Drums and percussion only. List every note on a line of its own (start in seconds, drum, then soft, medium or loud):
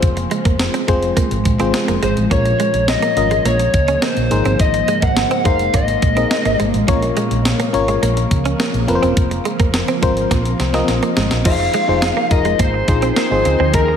0.02 kick loud
0.02 closed hi-hat medium
0.17 closed hi-hat soft
0.31 closed hi-hat medium
0.45 kick medium
0.45 closed hi-hat soft
0.59 snare loud
0.59 closed hi-hat medium
0.74 closed hi-hat soft
0.88 kick medium
0.88 closed hi-hat medium
1.03 closed hi-hat soft
1.17 kick medium
1.17 closed hi-hat medium
1.31 closed hi-hat medium
1.45 kick medium
1.45 closed hi-hat medium
1.60 closed hi-hat medium
1.74 snare medium
1.74 closed hi-hat medium
1.88 closed hi-hat soft
2.03 closed hi-hat medium
2.17 closed hi-hat soft
2.31 kick loud
2.31 closed hi-hat medium
2.45 closed hi-hat soft
2.60 closed hi-hat medium
2.74 closed hi-hat soft
2.88 snare loud
2.88 closed hi-hat medium
3.02 closed hi-hat soft
3.17 closed hi-hat medium
3.31 closed hi-hat soft
3.45 closed hi-hat medium
3.60 closed hi-hat medium
3.74 kick medium
3.74 closed hi-hat medium
3.88 closed hi-hat soft
4.02 snare loud
4.02 closed hi-hat medium
4.17 closed hi-hat soft
4.31 closed hi-hat medium
4.45 closed hi-hat soft
4.60 kick medium
4.60 closed hi-hat medium
4.74 closed hi-hat soft
4.88 closed hi-hat medium
5.02 kick medium
5.02 closed hi-hat soft
5.17 snare loud
5.17 closed hi-hat medium
5.31 closed hi-hat soft
5.45 kick medium
5.45 closed hi-hat medium
5.59 closed hi-hat soft
5.74 kick medium
5.74 closed hi-hat medium
5.88 closed hi-hat medium
6.02 kick medium
6.02 closed hi-hat medium
6.17 closed hi-hat soft
6.31 snare loud
6.31 closed hi-hat medium
6.45 closed hi-hat soft
6.60 closed hi-hat medium
6.74 closed hi-hat soft
6.88 kick loud
6.88 closed hi-hat medium
7.02 closed hi-hat soft
7.17 closed hi-hat medium
7.31 closed hi-hat soft
7.45 snare loud
7.45 closed hi-hat medium
7.60 closed hi-hat soft
7.74 closed hi-hat medium
7.88 closed hi-hat soft
8.03 closed hi-hat medium
8.17 closed hi-hat medium
8.31 kick medium
8.31 closed hi-hat medium
8.45 closed hi-hat soft
8.60 snare loud
8.60 closed hi-hat medium
8.74 closed hi-hat soft
8.88 closed hi-hat medium
9.03 closed hi-hat soft
9.17 kick loud
9.17 closed hi-hat medium
9.31 closed hi-hat medium
9.45 closed hi-hat medium
9.60 kick medium
9.60 closed hi-hat soft
9.74 snare loud
9.74 closed hi-hat medium
9.88 closed hi-hat soft
10.03 kick medium
10.03 closed hi-hat medium
10.17 closed hi-hat soft
10.31 kick medium
10.31 snare soft
10.31 closed hi-hat medium
10.45 closed hi-hat medium
10.60 snare medium
10.60 closed hi-hat medium
10.74 snare medium
10.74 closed hi-hat soft
10.88 snare medium
10.88 closed hi-hat medium
11.03 closed hi-hat soft
11.17 snare medium
11.17 closed hi-hat medium
11.31 snare medium
11.31 closed hi-hat soft
11.45 kick loud
11.45 closed hi-hat medium
11.45 crash medium
11.74 closed hi-hat medium
12.02 snare loud
12.02 closed hi-hat medium
12.31 kick medium
12.31 closed hi-hat medium
12.45 closed hi-hat soft
12.59 kick medium
12.59 closed hi-hat medium
12.88 kick medium
12.88 closed hi-hat medium
13.02 closed hi-hat soft
13.16 snare loud
13.16 closed hi-hat medium
13.45 closed hi-hat medium
13.74 kick loud
13.74 closed hi-hat medium